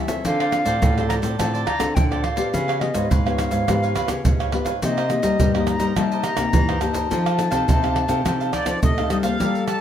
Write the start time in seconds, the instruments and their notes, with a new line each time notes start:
Already playing: nylon-string guitar E3
0.08 nylon-string guitar C4 F4 A4, cavaquinho A4 C#5 E5, pandeiro, shaker, surdo
0.25 nylon-string guitar D3, cavaquinho F4 A4 C5 D5, flute F5, pandeiro, shaker, surdo
0.40 cavaquinho A4 C5 D5, pandeiro, tamborim, shaker
0.52 nylon-string guitar C4 F4 A4, muted cavaquinho stroke, pandeiro, tamborim, shaker
0.65 nylon-string guitar A2, cavaquinho A4 C5 D5, pandeiro, shaker, surdo
0.82 nylon-string guitar A2, cavaquinho F4 A4 C5 D5, pandeiro, shaker, surdo
0.97 nylon-string guitar C4 F4 A4, cavaquinho A4 C5 D5, pandeiro, tamborim, shaker
1.08 flute A#5, pandeiro, tamborim, shaker
1.22 nylon-string guitar A2 C4 F4 A4, cavaquinho A4 C5 D5, pandeiro, shaker, surdo
1.38 nylon-string guitar A2 D3 C4 F4 A4, cavaquinho F4 A4 C5 D5, flute A5, pandeiro, tamborim, shaker, surdo
1.54 cavaquinho A4 C5 D5, pandeiro, shaker
1.65 cavaquinho F4 A4 C5 D5, flute A#5, pandeiro, tamborim, surdo
1.79 nylon-string guitar D3 C4 F4 A4, muted cavaquinho stroke, pandeiro, tamborim, shaker, surdo
1.95 nylon-string guitar A2 D3, flute G5, pandeiro, shaker, surdo
2.11 nylon-string guitar C4 F4 A4, cavaquinho A4 C5 D5, pandeiro, tamborim, shaker
2.23 cavaquinho F4 A4 C5 D5, flute F5, pandeiro, tamborim
2.36 nylon-string guitar B3 F4 G4, cavaquinho A4 C5 D5, pandeiro, shaker, surdo
2.52 nylon-string guitar C#3, cavaquinho F4 B4 C#5 F5, flute F5, pandeiro, shaker, surdo
2.68 cavaquinho B4 C#5 F5, pandeiro, tamborim, shaker
2.80 nylon-string guitar B3 F4 G4, flute D#5, muted cavaquinho stroke, pandeiro, tamborim
2.94 nylon-string guitar G#2, cavaquinho B4 C#5 F5, pandeiro, shaker, surdo
3.10 nylon-string guitar G#2, cavaquinho F4 B4 C#5 F5, flute F5, pandeiro, shaker, surdo
3.26 nylon-string guitar B3 F4 G4, cavaquinho B4 C#5 F5, pandeiro, tamborim, shaker
3.38 pandeiro, tamborim, shaker
3.51 nylon-string guitar G#2, cavaquinho B4 C#5 F5, pandeiro, shaker, surdo
3.67 nylon-string guitar G#2 C#3 B3 F4 G4, cavaquinho F4 B4 C#5 F5, pandeiro, tamborim, shaker, surdo
3.83 cavaquinho B4 C#5 F5, pandeiro, shaker
3.95 cavaquinho F4 B4 C#5 F5, pandeiro, tamborim, shaker, surdo
4.08 nylon-string guitar C#3 B3 F4 G4, muted cavaquinho stroke, pandeiro, tamborim, shaker, surdo
4.25 nylon-string guitar G#2 C#3, pandeiro, shaker, surdo
4.39 cavaquinho B4 C#5 F5, pandeiro, tamborim, shaker
4.52 nylon-string guitar B3 F4 G4, cavaquinho F4 B4 C#5 F5, pandeiro, tamborim
4.65 cavaquinho B4 C#5 F5, pandeiro, shaker, surdo
4.82 nylon-string guitar C3 A#3 D#4 G4, cavaquinho D#4 A#4 C5 D#5, flute D#5, pandeiro, shaker, surdo
4.97 cavaquinho A#4 C5 D#5, pandeiro, tamborim, shaker
5.10 nylon-string guitar A#3 D#4 G4, muted cavaquinho stroke, pandeiro, tamborim, shaker
5.22 nylon-string guitar G3, cavaquinho A#4 C5 D#5, pandeiro, shaker, surdo
5.39 nylon-string guitar G2 G3, cavaquinho D#4 A#4 C5 D#5, pandeiro, shaker, surdo
5.54 nylon-string guitar A#3 D#4 G4, cavaquinho A#4 C5 D#5, pandeiro, tamborim, shaker
5.67 flute A#5, pandeiro, tamborim, shaker
5.80 nylon-string guitar G3, cavaquinho A#4 C5 D#5, pandeiro, shaker, surdo
5.96 nylon-string guitar C3 G3 A#3 D#4 G4, cavaquinho D#4 A#4 C5 D#5, flute A5, pandeiro, tamborim, shaker, surdo
6.12 cavaquinho A#4 C5 D#5, pandeiro, shaker
6.24 cavaquinho D#4 A#4 C5 D#5, flute A#5, pandeiro, tamborim, shaker
6.37 nylon-string guitar C3 A#3 D#4 G4, muted cavaquinho stroke, pandeiro, tamborim, shaker, surdo
6.53 nylon-string guitar G2 E3, pandeiro, shaker, surdo
6.68 cavaquinho A#4 C5 D#5, pandeiro, tamborim, shaker
6.81 nylon-string guitar A#3 D#4 G4, cavaquinho D#4 A#4 C5 D#5, flute A5, pandeiro, tamborim, shaker
6.93 cavaquinho A#4 C5 D#5, pandeiro, shaker, surdo
7.10 nylon-string guitar F3 C4 D#4 A4, cavaquinho D#4 A4 C5 F5, pandeiro, shaker, surdo
7.26 cavaquinho A4 C5 F5, pandeiro, tamborim, shaker
7.38 nylon-string guitar C4 D#4 A4, muted cavaquinho stroke, pandeiro, tamborim, shaker
7.51 nylon-string guitar C3, cavaquinho A4 C5 F5, pandeiro, shaker, surdo
7.68 nylon-string guitar C3, cavaquinho D#4 A4 C5 F5, pandeiro, shaker, surdo
7.83 nylon-string guitar C4 D#4 A4, cavaquinho A4 C5 F5, pandeiro, tamborim, shaker
7.96 pandeiro, tamborim
8.08 nylon-string guitar C3 C4 D#4 A4, cavaquinho A4 C5 F5, pandeiro, shaker, surdo
8.25 nylon-string guitar C3 F3 C4 D#4 A4, cavaquinho D#4 A4 C5 F5, pandeiro, tamborim, shaker, surdo
8.40 cavaquinho A4 C5 F5, pandeiro, shaker
8.52 cavaquinho D#4 A4 C5 F5, accordion D5, pandeiro, tamborim, shaker, surdo
8.65 nylon-string guitar F3 C4 D#4 A4, muted cavaquinho stroke, pandeiro, tamborim, shaker, surdo
8.83 nylon-string guitar C3 A3, accordion D#5, pandeiro, shaker, surdo
8.98 nylon-string guitar C4 D#4 A4, cavaquinho A4 C5 F5, pandeiro, tamborim, shaker
9.10 nylon-string guitar G3, cavaquinho D#4 A4 C5 F5, accordion D#5, pandeiro, tamborim, shaker
9.23 nylon-string guitar A#3 F4 A4, cavaquinho A4 C5 F5, accordion F5, pandeiro, shaker, surdo
9.40 nylon-string guitar G3, cavaquinho G4 A#4 D5 F5, flute A4, pandeiro, shaker, surdo
9.55 pandeiro, shaker
9.68 cavaquinho G4 A#4 D5 F5, accordion A5, pandeiro, tamborim, shaker